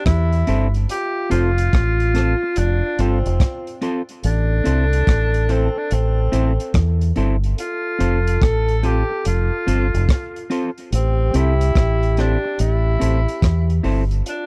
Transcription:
Already playing: G4
0.05 E2 E4, kick, cross-stick, closed hi-hat
0.33 closed hi-hat
0.47 G1 C4 E4 A4 C5, closed hi-hat
0.74 closed hi-hat
0.89 F4 G4, closed hi-hat
1.30 F1 C4 F4 A4 C5, closed hi-hat
1.58 closed hi-hat
1.73 A1, kick, cross-stick, closed hi-hat
2.00 closed hi-hat
2.14 C4 F4 A4 C5, cross-stick, closed hi-hat
2.43 muted clean electric guitar stroke
2.56 F1 D4, closed hi-hat
2.99 G1 C4 F4 A4 C5, closed hi-hat
3.26 F1, closed hi-hat
3.40 kick, cross-stick, closed hi-hat
3.67 closed hi-hat
3.81 C4 F4 A4 C5, closed hi-hat
4.09 closed hi-hat
4.24 A1 D4 A4, closed hi-hat
4.64 C2 C4 E4 A4 C5, closed hi-hat
4.93 closed hi-hat
5.07 A1, kick, cross-stick, closed hi-hat
5.34 closed hi-hat
5.49 C4 E4 A4 C5, closed hi-hat
5.76 D4, muted clean electric guitar stroke
5.91 A1 C4, closed hi-hat
6.32 A1 C4 E4 A4 C5, closed hi-hat
6.60 closed hi-hat
6.74 E2, kick, cross-stick, closed hi-hat
7.01 closed hi-hat
7.16 G1 C4 E4 A4 C5, closed hi-hat
7.44 closed hi-hat
7.58 F4 A4, closed hi-hat
7.99 F1 C4 F4 A4 C5, closed hi-hat
8.27 closed hi-hat
8.42 A1 A4, kick, cross-stick, closed hi-hat
8.68 closed hi-hat
8.83 C4 F4 G4 A4 C5, closed hi-hat
9.10 muted clean electric guitar stroke
9.25 F1 F4, closed hi-hat
9.67 G1 C4 F4 A4 C5, closed hi-hat
9.94 F1, closed hi-hat
10.09 kick, cross-stick, closed hi-hat
10.36 closed hi-hat
10.50 C4 F4 A4 C5, closed hi-hat
10.78 closed hi-hat
10.92 A1 C4 G4, closed hi-hat
11.34 C2 C4 E4 A4 C5, closed hi-hat
11.61 closed hi-hat
11.75 A1, kick, cross-stick, closed hi-hat
12.03 closed hi-hat
12.17 C4 D4 E4 A4 C5, cross-stick, closed hi-hat
12.44 muted clean electric guitar stroke
12.59 A1 E4, closed hi-hat
12.99 A1 C4 E4 A4 C5, closed hi-hat
13.28 closed hi-hat
13.42 E2, kick, cross-stick, closed hi-hat
13.70 closed hi-hat
13.83 G1 C4 E4 A4 C5, open hi-hat
14.11 closed hi-hat
14.26 D4 F4, closed hi-hat

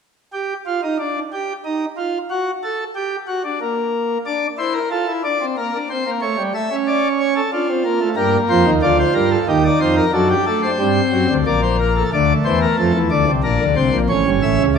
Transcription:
0.33 G4
0.67 F4
0.83 D#4
0.99 D4
1.33 G4
1.65 D#4
1.97 F4
2.30 F#4
2.63 A4
2.95 G4
3.27 F#4
3.44 D4
3.61 A#3
4.26 D4 D5
4.58 E4 C5
4.74 A#4
4.91 F4 A4
5.08 E4
5.24 D4 D5
5.41 C4
5.57 A#3 A#4
5.74 D4
5.90 C4 C5
6.06 A#3
6.22 A3 C#5
6.38 G3
6.54 A3 E5
6.70 C#4
6.87 D5
7.19 C#5
7.36 A4
7.53 D4 F4
7.69 C4
7.84 A#3
8.00 A3
8.16 G2 G3 A#3 A#4
8.50 F2 F3 C5
8.66 D#2 D#3
8.82 D2 D3 F4 D5
8.99 C5
9.15 G2 G3 A#4
9.31 A4
9.48 D#2 D#3 D#4 G4
9.64 D5
9.80 F2 F3 C5
9.96 A#4
10.13 F#2 F#3 D4 A4
10.30 G4
10.46 A3 A4
10.63 C5
10.79 G2 G3 C4
11.12 F#2 F#3
11.30 D2 D3
11.46 A#1 A#2 A#3 D5
11.62 C5
11.80 A#4
11.96 A4
12.13 D2 D3 A3 D5
12.45 E2 E3 C5
12.62 A#4
12.78 F2 F3 A4
12.94 E2 E3
13.10 D2 D3 D5
13.27 C2 C3
13.43 A#1 A#2 D4 A#4
13.60 D2 D3
13.76 C2 C3 C5
13.92 A#1 A#2
14.09 A1 A2 C#4 C#5
14.26 G1 G2
14.42 A1 A2 E5
14.59 C#2 C#3
14.75 A3

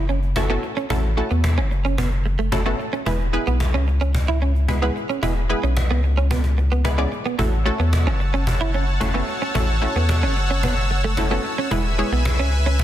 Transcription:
Already playing: F#1
0.09 C#4, cajon slap
0.23 cajon slap
0.36 A3 C#4 E4 F#4 A4, cajon bass, cajon slap
0.49 A3 B3 C#4 E4 F#4 A4, cajon slap
0.63 muted clean electric guitar stroke, cajon slap
0.76 C#4, cajon slap
0.90 A1 A3 C#4 E4 F#4 A4, cajon bass
1.04 cajon slap
1.17 A3 C#4 E4 F#4 A4, muted clean electric guitar stroke, cajon slap
1.30 E2 B3, cajon slap
1.44 cajon bass, cajon slap
1.58 F#1 C#4, cajon slap
1.71 muted clean electric guitar stroke, cajon slap
1.85 C#4, cajon slap
1.98 B3, cajon bass
2.12 cajon slap
2.25 muted clean electric guitar stroke, cajon slap
2.39 A3, cajon slap
2.52 A3 C#4 E4 F#4 A4, cajon bass, cajon slap
2.66 A3 B3 C#4 E4 F#4 A4, cajon slap
2.80 muted clean electric guitar stroke, cajon slap
2.93 C#4, cajon slap
3.06 E1 G#3 B3 E4 G#4 B4, cajon bass
3.20 cajon slap
3.33 G#3 B3 E4 G#4 B4, muted clean electric guitar stroke, cajon slap
3.47 B1 B3, cajon slap
3.60 cajon bass, cajon slap
3.74 C#2 C#4, cajon slap
3.87 muted clean electric guitar stroke, cajon slap
4.01 C#4, cajon slap
4.15 muted clean electric guitar stroke, cajon bass
4.28 E4, cajon slap
4.41 C#4, cajon slap
4.55 cajon slap
4.68 G#3 B3 E4 G#4 B4, cajon bass, cajon slap
4.82 G#3 B3 E4 G#4 B4, cajon slap
4.96 muted clean electric guitar stroke, cajon slap
5.09 C#4, cajon slap
5.22 E1 G#3 B3 E4 G#4 B4, cajon bass
5.36 cajon slap
5.49 G#3 B3 E4 G#4 B4, muted clean electric guitar stroke, cajon slap
5.63 B1 C#4, cajon slap
5.77 cajon bass, cajon slap
5.90 C#2 B3, cajon slap
6.03 muted clean electric guitar stroke, cajon slap
6.17 C#4, cajon slap
6.31 B3, cajon bass
6.44 cajon slap
6.57 muted clean electric guitar stroke, cajon slap
6.71 B3, cajon slap
6.84 G#3 B3 E4 G#4 B4, cajon bass, cajon slap
6.98 G#3 B3 C#4 E4 G#4 D5, cajon slap
7.12 muted clean electric guitar stroke, cajon slap
7.25 B3, cajon slap
7.38 A1 A3 C#4 E4 F#4 A4 C#5 F#5 A5 E6, cajon bass
7.53 cajon slap
7.65 A3 C#4 E4 F#4 A4, muted clean electric guitar stroke, cajon slap
7.79 E2 B3, cajon slap
7.93 cajon bass, cajon slap
8.06 F#1 C#4, cajon slap
8.20 muted clean electric guitar stroke, cajon slap
8.34 C#4, cajon slap
8.47 muted clean electric guitar stroke, cajon bass
8.60 E4, cajon slap
8.74 C#4, cajon slap
8.88 cajon slap
9.00 A3 C#4 E4 F#4 A4, cajon bass, cajon slap
9.14 A3 B3 C#4 E4 F#4 A4, cajon slap
9.28 muted clean electric guitar stroke, cajon slap
9.42 C#4, cajon slap
9.55 A1 A3 C#4 E4 F#4 A4, cajon bass
9.69 cajon slap
9.82 A3 C#4 E4 F#4 A4, muted clean electric guitar stroke, cajon slap
9.96 E2 B3, cajon slap
10.09 cajon bass, cajon slap
10.23 F#1 C#4, cajon slap
10.36 muted clean electric guitar stroke, cajon slap
10.50 C#4, cajon slap
10.63 B3, cajon bass
10.77 cajon slap
10.90 muted clean electric guitar stroke, cajon slap
11.04 A3, cajon slap
11.17 A3 C#4 E4 F#4 A4, cajon bass, cajon slap
11.30 A3 B3 C#4 E4 F#4 A4, cajon slap
11.45 muted clean electric guitar stroke, cajon slap
11.58 C#4, cajon slap
11.71 E1 G#3 B3 E4 G#4 B4 E5 G#5, cajon bass
11.85 cajon slap
11.98 G#3 B3 E4 G#4 C#5, muted clean electric guitar stroke, cajon slap
12.12 B1 B3, cajon slap
12.25 cajon bass, cajon slap
12.39 C#2 C#4, cajon slap
12.52 muted clean electric guitar stroke, cajon slap
12.66 C#4, cajon slap
12.79 muted clean electric guitar stroke, cajon bass

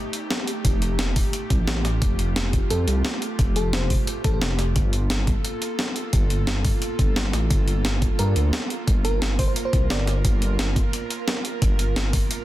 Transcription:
Already playing: A3 D#4 G4
0.13 closed hi-hat
0.31 snare, closed hi-hat
0.47 closed hi-hat
0.65 F1, kick, closed hi-hat
0.82 closed hi-hat
0.99 snare, closed hi-hat
1.16 F4, kick, open hi-hat
1.33 closed hi-hat
1.50 C2, kick, closed hi-hat
1.59 A1
1.68 snare, closed hi-hat
1.85 snare, closed hi-hat
2.02 F1, kick, closed hi-hat
2.19 closed hi-hat
2.36 snare, closed hi-hat
2.53 kick, closed hi-hat
2.70 F2 A4, closed hi-hat
2.87 C2, closed hi-hat
3.05 snare, closed hi-hat
3.22 closed hi-hat
3.39 F1, kick, closed hi-hat
3.56 A4, closed hi-hat
3.73 C5, snare, closed hi-hat
3.90 kick, open hi-hat
4.07 closed hi-hat
4.24 A1 A4, kick, closed hi-hat
4.33 A4
4.42 F1, snare, closed hi-hat
4.59 snare, closed hi-hat
4.76 G1 A#3 F4 A4, kick, closed hi-hat
4.93 closed hi-hat
5.10 snare, closed hi-hat
5.27 kick, closed hi-hat
5.45 closed hi-hat
5.62 closed hi-hat
5.79 snare, closed hi-hat
5.96 closed hi-hat
6.13 G1, kick, closed hi-hat
6.30 closed hi-hat
6.47 snare, closed hi-hat
6.65 kick, open hi-hat
6.82 closed hi-hat
6.99 G1, kick, closed hi-hat
7.16 snare, closed hi-hat
7.33 A1, snare, closed hi-hat
7.50 G1, kick, closed hi-hat
7.68 closed hi-hat
7.85 snare, closed hi-hat
8.02 kick, closed hi-hat
8.19 G2 A#4, closed hi-hat
8.36 D2, closed hi-hat
8.53 snare, closed hi-hat
8.70 closed hi-hat
8.88 G1 A#4, kick, closed hi-hat
9.05 A#4, closed hi-hat
9.22 snare, closed hi-hat
9.39 C5, kick, open hi-hat
9.48 C5
9.56 closed hi-hat
9.65 C5
9.73 C2, kick, closed hi-hat
9.90 G1 D5, snare, closed hi-hat
10.07 snare, closed hi-hat
10.24 G1, kick, closed hi-hat
10.42 closed hi-hat
10.59 snare, closed hi-hat
10.76 kick, closed hi-hat
10.93 closed hi-hat
11.10 closed hi-hat
11.28 snare, closed hi-hat
11.45 closed hi-hat
11.62 G1, kick, closed hi-hat
11.79 closed hi-hat
11.96 snare, closed hi-hat
12.13 kick, open hi-hat
12.31 closed hi-hat

